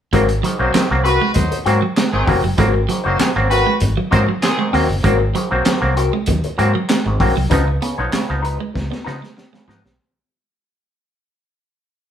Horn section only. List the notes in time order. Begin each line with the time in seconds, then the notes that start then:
0.59 F#3 D#4 C5
0.73 D#3 C4 G#4
1.04 F#4 B4
1.34 F#3 D#4 C5
2.12 D#3 C4 G#4
3.05 F#3 D#4 C5
3.19 D#3 C4 G#4
3.50 F#4 B4
4.11 F#3 D#4 C5
4.42 D#3 C4 G#4